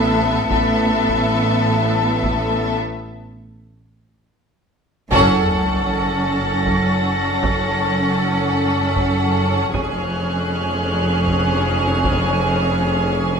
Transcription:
0, 0, Header, 1, 9, 480
1, 0, Start_track
1, 0, Tempo, 769231
1, 311, Time_signature, 3, 2, 24, 8
1, 8361, End_track
2, 0, Start_track
2, 0, Title_t, "Violin section"
2, 0, Program_c, 0, 48
2, 3191, Note_on_c, 0, 93, 37
2, 3671, Note_on_c, 0, 94, 39
2, 5275, Note_off_c, 0, 94, 0
2, 5275, Note_on_c, 0, 95, 39
2, 5806, Note_off_c, 0, 93, 0
2, 5806, Note_off_c, 0, 95, 0
2, 6065, Note_on_c, 0, 89, 35
2, 6067, Note_on_c, 0, 90, 34
2, 8204, Note_off_c, 0, 90, 0
2, 8361, Note_off_c, 0, 89, 0
2, 8361, End_track
3, 0, Start_track
3, 0, Title_t, "Violin section"
3, 0, Program_c, 1, 48
3, 0, Note_on_c, 1, 76, 59
3, 287, Note_off_c, 1, 76, 0
3, 314, Note_on_c, 1, 76, 46
3, 1728, Note_off_c, 1, 76, 0
3, 3193, Note_on_c, 1, 78, 58
3, 6047, Note_off_c, 1, 78, 0
3, 6073, Note_on_c, 1, 80, 46
3, 8361, Note_off_c, 1, 80, 0
3, 8361, End_track
4, 0, Start_track
4, 0, Title_t, "Violin section"
4, 0, Program_c, 2, 48
4, 0, Note_on_c, 2, 69, 58
4, 286, Note_off_c, 2, 69, 0
4, 315, Note_on_c, 2, 69, 49
4, 1728, Note_off_c, 2, 69, 0
4, 3192, Note_on_c, 2, 69, 62
4, 6047, Note_off_c, 2, 69, 0
4, 6073, Note_on_c, 2, 68, 43
4, 8361, Note_off_c, 2, 68, 0
4, 8361, End_track
5, 0, Start_track
5, 0, Title_t, "Viola section"
5, 0, Program_c, 3, 48
5, 0, Note_on_c, 3, 59, 58
5, 289, Note_off_c, 3, 59, 0
5, 308, Note_on_c, 3, 59, 50
5, 1725, Note_off_c, 3, 59, 0
5, 3190, Note_on_c, 3, 61, 65
5, 6046, Note_off_c, 3, 61, 0
5, 6074, Note_on_c, 3, 61, 45
5, 8361, Note_off_c, 3, 61, 0
5, 8361, End_track
6, 0, Start_track
6, 0, Title_t, "Cello section"
6, 0, Program_c, 4, 48
6, 0, Note_on_c, 4, 45, 57
6, 287, Note_off_c, 4, 45, 0
6, 312, Note_on_c, 4, 45, 48
6, 1727, Note_off_c, 4, 45, 0
6, 3191, Note_on_c, 4, 42, 60
6, 6046, Note_off_c, 4, 42, 0
6, 6072, Note_on_c, 4, 41, 48
6, 8361, Note_off_c, 4, 41, 0
6, 8361, End_track
7, 0, Start_track
7, 0, Title_t, "Double bass section"
7, 0, Program_c, 5, 48
7, 0, Note_on_c, 5, 33, 53
7, 290, Note_off_c, 5, 33, 0
7, 312, Note_on_c, 5, 33, 49
7, 1727, Note_off_c, 5, 33, 0
7, 3190, Note_on_c, 5, 30, 58
7, 6046, Note_off_c, 5, 30, 0
7, 6072, Note_on_c, 5, 29, 47
7, 8361, Note_off_c, 5, 29, 0
7, 8361, End_track
8, 0, Start_track
8, 0, Title_t, "Sub drop"
8, 0, Program_c, 6, 103
8, 3191, Note_on_c, 6, 60, 55
8, 4631, Note_off_c, 6, 60, 0
8, 8361, End_track
9, 0, Start_track
9, 0, Title_t, "Taiko and cinematic ensemble drums"
9, 316, Note_on_c, 9, 41, 76
9, 378, Note_off_c, 9, 41, 0
9, 675, Note_on_c, 9, 41, 62
9, 738, Note_off_c, 9, 41, 0
9, 1394, Note_on_c, 9, 41, 69
9, 1457, Note_off_c, 9, 41, 0
9, 3193, Note_on_c, 9, 41, 77
9, 3255, Note_off_c, 9, 41, 0
9, 4156, Note_on_c, 9, 41, 64
9, 4219, Note_off_c, 9, 41, 0
9, 4635, Note_on_c, 9, 41, 82
9, 4698, Note_off_c, 9, 41, 0
9, 5593, Note_on_c, 9, 41, 61
9, 5655, Note_off_c, 9, 41, 0
9, 6078, Note_on_c, 9, 41, 78
9, 6140, Note_off_c, 9, 41, 0
9, 7036, Note_on_c, 9, 41, 63
9, 7098, Note_off_c, 9, 41, 0
9, 7513, Note_on_c, 9, 41, 74
9, 7575, Note_off_c, 9, 41, 0
9, 8361, End_track
0, 0, End_of_file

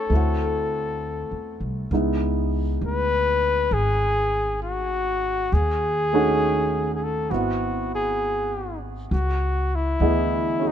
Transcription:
0, 0, Header, 1, 4, 480
1, 0, Start_track
1, 0, Key_signature, 4, "minor"
1, 0, Tempo, 899550
1, 1012, Time_signature, 4, 2, 24, 8
1, 5718, End_track
2, 0, Start_track
2, 0, Title_t, "Trumpet"
2, 0, Program_c, 0, 56
2, 0, Note_on_c, 0, 69, 62
2, 874, Note_off_c, 0, 69, 0
2, 1528, Note_on_c, 0, 71, 85
2, 1991, Note_on_c, 0, 68, 83
2, 1999, Note_off_c, 0, 71, 0
2, 2461, Note_off_c, 0, 68, 0
2, 2467, Note_on_c, 0, 66, 69
2, 2954, Note_on_c, 0, 68, 78
2, 2962, Note_off_c, 0, 66, 0
2, 3697, Note_off_c, 0, 68, 0
2, 3709, Note_on_c, 0, 68, 49
2, 3753, Note_on_c, 0, 69, 60
2, 3761, Note_off_c, 0, 68, 0
2, 3902, Note_on_c, 0, 66, 67
2, 3910, Note_off_c, 0, 69, 0
2, 4222, Note_off_c, 0, 66, 0
2, 4241, Note_on_c, 0, 68, 65
2, 4688, Note_off_c, 0, 68, 0
2, 4869, Note_on_c, 0, 66, 66
2, 5203, Note_on_c, 0, 64, 67
2, 5211, Note_off_c, 0, 66, 0
2, 5696, Note_on_c, 0, 63, 70
2, 5704, Note_off_c, 0, 64, 0
2, 5718, Note_off_c, 0, 63, 0
2, 5718, End_track
3, 0, Start_track
3, 0, Title_t, "Upright piano"
3, 0, Program_c, 1, 0
3, 0, Control_c, 1, 64, 127
3, 0, Note_on_c, 1, 57, 45
3, 0, Note_on_c, 1, 61, 45
3, 0, Note_on_c, 1, 63, 40
3, 0, Note_on_c, 1, 66, 49
3, 51, Note_off_c, 1, 57, 0
3, 51, Note_on_c, 1, 57, 40
3, 58, Note_off_c, 1, 63, 0
3, 60, Note_on_c, 1, 60, 36
3, 61, Control_c, 1, 64, 0
3, 62, Note_off_c, 1, 66, 0
3, 63, Note_off_c, 1, 61, 0
3, 67, Note_on_c, 1, 64, 39
3, 79, Note_on_c, 1, 66, 44
3, 170, Control_c, 1, 64, 127
3, 1010, Note_off_c, 1, 57, 0
3, 1015, Note_off_c, 1, 60, 0
3, 1019, Note_off_c, 1, 64, 0
3, 1019, Control_c, 1, 64, 0
3, 1025, Note_off_c, 1, 66, 0
3, 1026, Note_on_c, 1, 59, 38
3, 1028, Note_on_c, 1, 56, 40
3, 1032, Note_on_c, 1, 63, 37
3, 1036, Note_on_c, 1, 64, 43
3, 1125, Control_c, 1, 64, 127
3, 2937, Note_off_c, 1, 59, 0
3, 2938, Note_off_c, 1, 56, 0
3, 2938, Control_c, 1, 64, 0
3, 2940, Note_off_c, 1, 63, 0
3, 2942, Note_off_c, 1, 64, 0
3, 3034, Control_c, 1, 64, 127
3, 3270, Note_on_c, 1, 57, 45
3, 3275, Note_on_c, 1, 61, 42
3, 3277, Note_on_c, 1, 66, 50
3, 3279, Note_on_c, 1, 63, 42
3, 3895, Note_on_c, 1, 59, 44
3, 3897, Note_off_c, 1, 57, 0
3, 3897, Control_c, 1, 64, 0
3, 3899, Note_off_c, 1, 61, 0
3, 3900, Note_off_c, 1, 66, 0
3, 3901, Note_off_c, 1, 63, 0
3, 3908, Note_on_c, 1, 60, 39
3, 3915, Note_on_c, 1, 64, 42
3, 3923, Note_on_c, 1, 66, 49
3, 3991, Control_c, 1, 64, 127
3, 4853, Note_off_c, 1, 59, 0
3, 4858, Control_c, 1, 64, 0
3, 4859, Note_off_c, 1, 60, 0
3, 4863, Note_off_c, 1, 64, 0
3, 4867, Note_off_c, 1, 66, 0
3, 4947, Control_c, 1, 64, 127
3, 5340, Note_on_c, 1, 59, 42
3, 5342, Note_on_c, 1, 75, 35
3, 5345, Note_on_c, 1, 52, 39
3, 5348, Note_on_c, 1, 68, 45
3, 5653, Note_on_c, 1, 61, 36
3, 5660, Note_on_c, 1, 66, 33
3, 5661, Note_off_c, 1, 68, 0
3, 5669, Note_on_c, 1, 68, 39
3, 5718, Note_off_c, 1, 52, 0
3, 5718, Note_off_c, 1, 59, 0
3, 5718, Note_off_c, 1, 61, 0
3, 5718, Note_off_c, 1, 66, 0
3, 5718, Note_off_c, 1, 68, 0
3, 5718, Note_off_c, 1, 75, 0
3, 5718, End_track
4, 0, Start_track
4, 0, Title_t, "Upright bass"
4, 0, Program_c, 2, 32
4, 53, Note_on_c, 2, 38, 63
4, 671, Note_off_c, 2, 38, 0
4, 701, Note_on_c, 2, 40, 44
4, 846, Note_off_c, 2, 40, 0
4, 856, Note_on_c, 2, 36, 50
4, 1003, Note_off_c, 2, 36, 0
4, 1019, Note_on_c, 2, 37, 72
4, 1473, Note_off_c, 2, 37, 0
4, 1502, Note_on_c, 2, 38, 61
4, 1955, Note_off_c, 2, 38, 0
4, 1980, Note_on_c, 2, 32, 68
4, 2913, Note_off_c, 2, 32, 0
4, 2947, Note_on_c, 2, 39, 71
4, 3877, Note_off_c, 2, 39, 0
4, 3900, Note_on_c, 2, 32, 68
4, 4834, Note_off_c, 2, 32, 0
4, 4862, Note_on_c, 2, 37, 72
4, 5315, Note_off_c, 2, 37, 0
4, 5336, Note_on_c, 2, 38, 63
4, 5718, Note_off_c, 2, 38, 0
4, 5718, End_track
0, 0, End_of_file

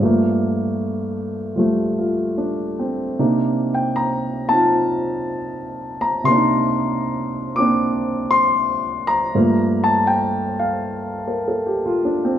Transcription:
0, 0, Header, 1, 2, 480
1, 0, Start_track
1, 0, Key_signature, -2, "minor"
1, 0, Tempo, 790514
1, 23, Time_signature, 4, 2, 24, 8
1, 2423, Tempo, 767263
1, 7677, End_track
2, 0, Start_track
2, 0, Title_t, "Grand piano"
2, 0, Program_c, 0, 0
2, 0, Control_c, 0, 64, 127
2, 0, Note_on_c, 0, 43, 44
2, 10, Note_on_c, 0, 53, 41
2, 18, Note_on_c, 0, 57, 45
2, 31, Control_c, 0, 64, 0
2, 32, Note_on_c, 0, 58, 50
2, 121, Control_c, 0, 64, 127
2, 935, Note_off_c, 0, 53, 0
2, 944, Note_on_c, 0, 53, 36
2, 953, Note_on_c, 0, 55, 29
2, 956, Note_off_c, 0, 57, 0
2, 965, Note_on_c, 0, 57, 42
2, 1205, Note_on_c, 0, 65, 36
2, 1443, Note_on_c, 0, 62, 38
2, 1550, Note_off_c, 0, 65, 0
2, 1696, Note_on_c, 0, 60, 38
2, 1838, Note_off_c, 0, 62, 0
2, 1930, Note_off_c, 0, 58, 0
2, 1931, Note_off_c, 0, 43, 0
2, 1931, Note_off_c, 0, 53, 0
2, 1936, Note_off_c, 0, 55, 0
2, 1937, Note_on_c, 0, 48, 45
2, 1939, Note_on_c, 0, 58, 41
2, 1939, Note_on_c, 0, 62, 38
2, 1942, Note_off_c, 0, 57, 0
2, 1942, Note_on_c, 0, 63, 47
2, 1951, Control_c, 0, 64, 0
2, 2038, Note_off_c, 0, 60, 0
2, 2044, Control_c, 0, 64, 127
2, 2273, Note_on_c, 0, 79, 65
2, 2403, Note_on_c, 0, 82, 77
2, 2425, Note_off_c, 0, 79, 0
2, 2480, Note_off_c, 0, 82, 0
2, 2734, Note_on_c, 0, 81, 81
2, 2737, Note_off_c, 0, 63, 0
2, 2740, Note_on_c, 0, 60, 39
2, 2747, Note_on_c, 0, 63, 37
2, 2757, Note_on_c, 0, 65, 46
2, 3687, Note_on_c, 0, 82, 75
2, 3738, Note_off_c, 0, 81, 0
2, 3820, Note_off_c, 0, 48, 0
2, 3830, Note_on_c, 0, 48, 47
2, 3839, Note_on_c, 0, 84, 93
2, 3840, Note_off_c, 0, 58, 0
2, 3840, Note_off_c, 0, 82, 0
2, 3850, Note_on_c, 0, 58, 43
2, 3860, Note_off_c, 0, 60, 0
2, 3864, Note_off_c, 0, 63, 0
2, 3865, Note_off_c, 0, 62, 0
2, 3869, Note_off_c, 0, 65, 0
2, 3877, Note_on_c, 0, 62, 40
2, 3896, Note_on_c, 0, 63, 53
2, 4653, Note_off_c, 0, 58, 0
2, 4655, Note_on_c, 0, 86, 79
2, 4662, Note_on_c, 0, 58, 43
2, 4671, Note_off_c, 0, 62, 0
2, 4673, Note_on_c, 0, 60, 41
2, 4680, Note_on_c, 0, 62, 49
2, 4684, Note_off_c, 0, 84, 0
2, 5118, Note_off_c, 0, 86, 0
2, 5123, Note_on_c, 0, 84, 93
2, 5603, Note_on_c, 0, 82, 94
2, 5629, Note_off_c, 0, 84, 0
2, 5757, Note_off_c, 0, 48, 0
2, 5770, Note_off_c, 0, 58, 0
2, 5774, Note_on_c, 0, 43, 45
2, 5775, Note_off_c, 0, 60, 0
2, 5776, Note_on_c, 0, 53, 42
2, 5779, Note_off_c, 0, 62, 0
2, 5779, Note_on_c, 0, 57, 38
2, 5783, Note_on_c, 0, 58, 50
2, 5786, Control_c, 0, 64, 0
2, 5791, Note_off_c, 0, 63, 0
2, 5880, Control_c, 0, 64, 127
2, 6066, Note_off_c, 0, 82, 0
2, 6080, Note_on_c, 0, 81, 82
2, 6227, Note_on_c, 0, 79, 80
2, 6245, Note_off_c, 0, 81, 0
2, 6547, Note_off_c, 0, 79, 0
2, 6554, Note_on_c, 0, 77, 63
2, 6980, Note_on_c, 0, 70, 42
2, 7107, Note_on_c, 0, 69, 40
2, 7126, Note_off_c, 0, 70, 0
2, 7223, Note_on_c, 0, 67, 44
2, 7271, Note_off_c, 0, 69, 0
2, 7345, Note_on_c, 0, 65, 53
2, 7455, Note_off_c, 0, 67, 0
2, 7465, Note_on_c, 0, 62, 47
2, 7514, Note_off_c, 0, 77, 0
2, 7555, Note_off_c, 0, 65, 0
2, 7589, Note_on_c, 0, 60, 50
2, 7611, Note_off_c, 0, 62, 0
2, 7677, Note_off_c, 0, 43, 0
2, 7677, Note_off_c, 0, 53, 0
2, 7677, Note_off_c, 0, 57, 0
2, 7677, Note_off_c, 0, 58, 0
2, 7677, Note_off_c, 0, 60, 0
2, 7677, End_track
0, 0, End_of_file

